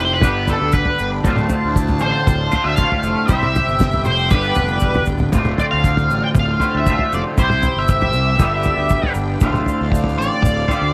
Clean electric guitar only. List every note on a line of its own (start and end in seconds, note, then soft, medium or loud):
0.00 0.21 C3 medium
0.00 0.21 G3 medium
0.00 0.22 C4 medium
0.00 0.22 E4 medium
0.00 0.22 G4 medium
0.00 0.22 C5 medium
0.22 1.23 G2 medium
0.22 1.23 D3 medium
0.22 1.24 G3 medium
0.22 1.24 B3 medium
0.22 1.24 D4 medium
0.22 1.24 G4 medium
1.24 2.50 D2 medium
1.24 2.51 A2 medium
1.24 2.51 D3 medium
1.24 2.51 A3 medium
1.24 2.50 C4 loud
1.24 2.50 F4 loud
2.52 2.76 D2 medium
2.52 2.77 A2 medium
2.52 2.77 D3 medium
2.52 2.77 A3 medium
2.52 2.76 C4 medium
2.52 2.76 F4 medium
2.77 3.27 D2 medium
2.77 3.28 A2 medium
2.77 3.28 D3 medium
2.77 3.28 A3 medium
2.77 3.28 C4 medium
2.77 3.28 F4 medium
3.28 4.29 C3 medium
3.28 4.29 G3 medium
3.28 4.30 C4 medium
3.28 4.30 E4 medium
3.28 4.30 G4 loud
3.28 4.30 C5 medium
4.29 5.31 G2 medium
4.29 5.31 D3 medium
4.29 5.31 G3 medium
4.29 5.31 B3 medium
4.29 5.32 D4 medium
4.29 5.33 G4 medium
5.32 6.59 D2 medium
5.32 6.59 A2 medium
5.32 6.59 D3 medium
5.32 6.60 A3 medium
5.32 6.59 C4 medium
5.32 6.59 F4 medium
6.60 6.85 D2 medium
6.60 6.85 A2 medium
6.60 6.85 D3 medium
6.60 6.85 A3 medium
6.60 6.85 C4 medium
6.60 6.84 F4 medium
6.86 7.36 D2 medium
6.86 7.36 A2 medium
6.86 7.36 D3 medium
6.86 7.37 A3 medium
6.86 7.37 C4 medium
6.86 7.38 F4 medium
7.37 8.38 C3 medium
7.37 8.38 G3 medium
7.37 8.38 C4 medium
7.37 8.38 E4 medium
7.37 8.39 G4 medium
7.37 8.39 C5 loud
8.39 9.40 G2 medium
8.39 9.40 D3 medium
8.39 9.41 G3 medium
8.39 9.41 B3 medium
8.39 9.41 D4 medium
8.39 9.41 G4 medium
9.41 10.67 D2 medium
9.41 10.68 A2 medium
9.41 10.68 D3 loud
9.41 10.68 A3 medium
9.41 10.67 C4 medium
9.41 10.67 F4 medium
10.68 10.93 D2 medium
10.68 10.93 A2 medium
10.68 10.93 D3 medium
10.68 10.93 A3 medium
10.68 10.93 C4 medium
10.68 10.93 F4 medium